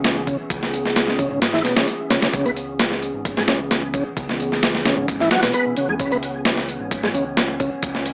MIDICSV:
0, 0, Header, 1, 5, 480
1, 0, Start_track
1, 0, Key_signature, 4, "minor"
1, 0, Tempo, 458015
1, 526, Time_signature, 4, 2, 24, 8
1, 8520, End_track
2, 0, Start_track
2, 0, Title_t, "Ambient pad"
2, 0, Program_c, 0, 92
2, 0, Note_on_c, 0, 52, 74
2, 0, Note_on_c, 0, 59, 67
2, 0, Note_on_c, 0, 61, 68
2, 0, Note_on_c, 0, 68, 82
2, 6263, Note_off_c, 0, 68, 0
2, 6286, Note_on_c, 0, 73, 81
2, 8520, Note_off_c, 0, 52, 0
2, 8520, Note_off_c, 0, 59, 0
2, 8520, Note_off_c, 0, 61, 0
2, 8520, Note_off_c, 0, 73, 0
2, 8520, End_track
3, 0, Start_track
3, 0, Title_t, "Tonewheel organ"
3, 0, Program_c, 1, 16
3, 282, Note_on_c, 1, 49, 71
3, 387, Note_off_c, 1, 49, 0
3, 1245, Note_on_c, 1, 49, 77
3, 1348, Note_off_c, 1, 49, 0
3, 1369, Note_on_c, 1, 49, 75
3, 1464, Note_off_c, 1, 49, 0
3, 1607, Note_on_c, 1, 52, 76
3, 1703, Note_off_c, 1, 52, 0
3, 1721, Note_on_c, 1, 47, 73
3, 1837, Note_off_c, 1, 47, 0
3, 1843, Note_on_c, 1, 49, 70
3, 1956, Note_off_c, 1, 49, 0
3, 2202, Note_on_c, 1, 49, 77
3, 2307, Note_off_c, 1, 49, 0
3, 2330, Note_on_c, 1, 49, 74
3, 2387, Note_off_c, 1, 49, 0
3, 2451, Note_on_c, 1, 49, 83
3, 2568, Note_off_c, 1, 49, 0
3, 2574, Note_on_c, 1, 59, 78
3, 2629, Note_off_c, 1, 59, 0
3, 3537, Note_on_c, 1, 56, 74
3, 3590, Note_off_c, 1, 56, 0
3, 3650, Note_on_c, 1, 49, 77
3, 3751, Note_off_c, 1, 49, 0
3, 4130, Note_on_c, 1, 49, 74
3, 4231, Note_off_c, 1, 49, 0
3, 5085, Note_on_c, 1, 49, 73
3, 5189, Note_off_c, 1, 49, 0
3, 5212, Note_on_c, 1, 49, 76
3, 5305, Note_off_c, 1, 49, 0
3, 5458, Note_on_c, 1, 52, 75
3, 5548, Note_off_c, 1, 52, 0
3, 5567, Note_on_c, 1, 54, 95
3, 5669, Note_off_c, 1, 54, 0
3, 5694, Note_on_c, 1, 47, 89
3, 5796, Note_off_c, 1, 47, 0
3, 5807, Note_on_c, 1, 59, 98
3, 5926, Note_off_c, 1, 59, 0
3, 5932, Note_on_c, 1, 47, 73
3, 6025, Note_off_c, 1, 47, 0
3, 6048, Note_on_c, 1, 49, 76
3, 6167, Note_off_c, 1, 49, 0
3, 6175, Note_on_c, 1, 56, 78
3, 6230, Note_off_c, 1, 56, 0
3, 6290, Note_on_c, 1, 49, 79
3, 6408, Note_off_c, 1, 49, 0
3, 6412, Note_on_c, 1, 59, 76
3, 6468, Note_off_c, 1, 59, 0
3, 7374, Note_on_c, 1, 56, 73
3, 7429, Note_off_c, 1, 56, 0
3, 7487, Note_on_c, 1, 49, 78
3, 7590, Note_off_c, 1, 49, 0
3, 7966, Note_on_c, 1, 49, 77
3, 8069, Note_off_c, 1, 49, 0
3, 8520, End_track
4, 0, Start_track
4, 0, Title_t, "Picked electric bass"
4, 0, Program_c, 2, 34
4, 0, Note_on_c, 2, 37, 109
4, 370, Note_off_c, 2, 37, 0
4, 525, Note_on_c, 2, 37, 95
4, 1332, Note_off_c, 2, 37, 0
4, 1368, Note_on_c, 2, 32, 90
4, 1688, Note_off_c, 2, 32, 0
4, 2447, Note_on_c, 2, 37, 99
4, 3253, Note_off_c, 2, 37, 0
4, 3290, Note_on_c, 2, 32, 89
4, 3610, Note_off_c, 2, 32, 0
4, 3644, Note_on_c, 2, 37, 106
4, 4212, Note_off_c, 2, 37, 0
4, 4367, Note_on_c, 2, 37, 102
4, 5173, Note_off_c, 2, 37, 0
4, 5209, Note_on_c, 2, 32, 85
4, 5529, Note_off_c, 2, 32, 0
4, 6170, Note_on_c, 2, 40, 90
4, 6263, Note_off_c, 2, 40, 0
4, 6284, Note_on_c, 2, 37, 95
4, 7092, Note_off_c, 2, 37, 0
4, 7127, Note_on_c, 2, 32, 85
4, 7448, Note_off_c, 2, 32, 0
4, 7484, Note_on_c, 2, 37, 106
4, 8052, Note_off_c, 2, 37, 0
4, 8202, Note_on_c, 2, 37, 102
4, 8520, Note_off_c, 2, 37, 0
4, 8520, End_track
5, 0, Start_track
5, 0, Title_t, "Drums"
5, 46, Note_on_c, 9, 38, 109
5, 46, Note_on_c, 9, 42, 84
5, 151, Note_off_c, 9, 38, 0
5, 151, Note_off_c, 9, 42, 0
5, 285, Note_on_c, 9, 36, 90
5, 286, Note_on_c, 9, 42, 62
5, 390, Note_off_c, 9, 36, 0
5, 391, Note_off_c, 9, 42, 0
5, 526, Note_on_c, 9, 36, 114
5, 528, Note_on_c, 9, 42, 82
5, 631, Note_off_c, 9, 36, 0
5, 633, Note_off_c, 9, 42, 0
5, 658, Note_on_c, 9, 38, 45
5, 762, Note_off_c, 9, 38, 0
5, 771, Note_on_c, 9, 42, 71
5, 875, Note_off_c, 9, 42, 0
5, 896, Note_on_c, 9, 38, 41
5, 1001, Note_off_c, 9, 38, 0
5, 1008, Note_on_c, 9, 38, 109
5, 1008, Note_on_c, 9, 42, 88
5, 1112, Note_off_c, 9, 38, 0
5, 1112, Note_off_c, 9, 42, 0
5, 1133, Note_on_c, 9, 38, 55
5, 1238, Note_off_c, 9, 38, 0
5, 1247, Note_on_c, 9, 36, 91
5, 1247, Note_on_c, 9, 42, 66
5, 1351, Note_off_c, 9, 36, 0
5, 1352, Note_off_c, 9, 42, 0
5, 1487, Note_on_c, 9, 38, 102
5, 1487, Note_on_c, 9, 42, 77
5, 1592, Note_off_c, 9, 38, 0
5, 1592, Note_off_c, 9, 42, 0
5, 1614, Note_on_c, 9, 38, 40
5, 1719, Note_off_c, 9, 38, 0
5, 1727, Note_on_c, 9, 38, 41
5, 1727, Note_on_c, 9, 42, 70
5, 1832, Note_off_c, 9, 38, 0
5, 1832, Note_off_c, 9, 42, 0
5, 1851, Note_on_c, 9, 38, 114
5, 1955, Note_off_c, 9, 38, 0
5, 1966, Note_on_c, 9, 42, 84
5, 2071, Note_off_c, 9, 42, 0
5, 2206, Note_on_c, 9, 38, 103
5, 2206, Note_on_c, 9, 42, 78
5, 2311, Note_off_c, 9, 38, 0
5, 2311, Note_off_c, 9, 42, 0
5, 2332, Note_on_c, 9, 38, 102
5, 2332, Note_on_c, 9, 42, 75
5, 2436, Note_off_c, 9, 38, 0
5, 2436, Note_off_c, 9, 42, 0
5, 2446, Note_on_c, 9, 42, 83
5, 2447, Note_on_c, 9, 36, 109
5, 2550, Note_off_c, 9, 42, 0
5, 2552, Note_off_c, 9, 36, 0
5, 2574, Note_on_c, 9, 42, 45
5, 2679, Note_off_c, 9, 42, 0
5, 2688, Note_on_c, 9, 42, 70
5, 2793, Note_off_c, 9, 42, 0
5, 2929, Note_on_c, 9, 38, 117
5, 2929, Note_on_c, 9, 42, 87
5, 3034, Note_off_c, 9, 38, 0
5, 3034, Note_off_c, 9, 42, 0
5, 3056, Note_on_c, 9, 38, 45
5, 3161, Note_off_c, 9, 38, 0
5, 3169, Note_on_c, 9, 42, 67
5, 3274, Note_off_c, 9, 42, 0
5, 3408, Note_on_c, 9, 36, 112
5, 3410, Note_on_c, 9, 42, 82
5, 3513, Note_off_c, 9, 36, 0
5, 3514, Note_off_c, 9, 42, 0
5, 3534, Note_on_c, 9, 38, 50
5, 3639, Note_off_c, 9, 38, 0
5, 3646, Note_on_c, 9, 38, 102
5, 3646, Note_on_c, 9, 42, 75
5, 3751, Note_off_c, 9, 38, 0
5, 3751, Note_off_c, 9, 42, 0
5, 3888, Note_on_c, 9, 38, 100
5, 3888, Note_on_c, 9, 42, 80
5, 3993, Note_off_c, 9, 38, 0
5, 3993, Note_off_c, 9, 42, 0
5, 4127, Note_on_c, 9, 36, 94
5, 4128, Note_on_c, 9, 42, 65
5, 4232, Note_off_c, 9, 36, 0
5, 4233, Note_off_c, 9, 42, 0
5, 4368, Note_on_c, 9, 36, 109
5, 4370, Note_on_c, 9, 42, 85
5, 4472, Note_off_c, 9, 36, 0
5, 4474, Note_off_c, 9, 42, 0
5, 4499, Note_on_c, 9, 38, 45
5, 4604, Note_off_c, 9, 38, 0
5, 4612, Note_on_c, 9, 42, 64
5, 4717, Note_off_c, 9, 42, 0
5, 4738, Note_on_c, 9, 38, 41
5, 4842, Note_off_c, 9, 38, 0
5, 4851, Note_on_c, 9, 38, 116
5, 4851, Note_on_c, 9, 42, 88
5, 4956, Note_off_c, 9, 38, 0
5, 4956, Note_off_c, 9, 42, 0
5, 4976, Note_on_c, 9, 38, 56
5, 5081, Note_off_c, 9, 38, 0
5, 5088, Note_on_c, 9, 38, 103
5, 5088, Note_on_c, 9, 42, 80
5, 5193, Note_off_c, 9, 38, 0
5, 5193, Note_off_c, 9, 42, 0
5, 5327, Note_on_c, 9, 36, 100
5, 5328, Note_on_c, 9, 42, 84
5, 5432, Note_off_c, 9, 36, 0
5, 5432, Note_off_c, 9, 42, 0
5, 5452, Note_on_c, 9, 38, 38
5, 5557, Note_off_c, 9, 38, 0
5, 5565, Note_on_c, 9, 38, 101
5, 5565, Note_on_c, 9, 42, 75
5, 5669, Note_off_c, 9, 38, 0
5, 5669, Note_off_c, 9, 42, 0
5, 5688, Note_on_c, 9, 38, 102
5, 5688, Note_on_c, 9, 42, 77
5, 5793, Note_off_c, 9, 38, 0
5, 5793, Note_off_c, 9, 42, 0
5, 5800, Note_on_c, 9, 42, 84
5, 5905, Note_off_c, 9, 42, 0
5, 6042, Note_on_c, 9, 42, 67
5, 6147, Note_off_c, 9, 42, 0
5, 6282, Note_on_c, 9, 42, 84
5, 6284, Note_on_c, 9, 36, 114
5, 6387, Note_off_c, 9, 42, 0
5, 6389, Note_off_c, 9, 36, 0
5, 6410, Note_on_c, 9, 42, 43
5, 6514, Note_off_c, 9, 42, 0
5, 6526, Note_on_c, 9, 42, 67
5, 6631, Note_off_c, 9, 42, 0
5, 6762, Note_on_c, 9, 38, 115
5, 6762, Note_on_c, 9, 42, 84
5, 6867, Note_off_c, 9, 38, 0
5, 6867, Note_off_c, 9, 42, 0
5, 6890, Note_on_c, 9, 38, 45
5, 6995, Note_off_c, 9, 38, 0
5, 7007, Note_on_c, 9, 42, 68
5, 7111, Note_off_c, 9, 42, 0
5, 7245, Note_on_c, 9, 36, 104
5, 7245, Note_on_c, 9, 42, 84
5, 7350, Note_off_c, 9, 36, 0
5, 7350, Note_off_c, 9, 42, 0
5, 7372, Note_on_c, 9, 38, 49
5, 7477, Note_off_c, 9, 38, 0
5, 7488, Note_on_c, 9, 42, 68
5, 7593, Note_off_c, 9, 42, 0
5, 7725, Note_on_c, 9, 38, 114
5, 7725, Note_on_c, 9, 42, 88
5, 7830, Note_off_c, 9, 38, 0
5, 7830, Note_off_c, 9, 42, 0
5, 7965, Note_on_c, 9, 36, 91
5, 7965, Note_on_c, 9, 42, 66
5, 8070, Note_off_c, 9, 36, 0
5, 8070, Note_off_c, 9, 42, 0
5, 8202, Note_on_c, 9, 42, 88
5, 8204, Note_on_c, 9, 36, 105
5, 8306, Note_off_c, 9, 42, 0
5, 8309, Note_off_c, 9, 36, 0
5, 8329, Note_on_c, 9, 38, 43
5, 8434, Note_off_c, 9, 38, 0
5, 8444, Note_on_c, 9, 42, 68
5, 8520, Note_off_c, 9, 42, 0
5, 8520, End_track
0, 0, End_of_file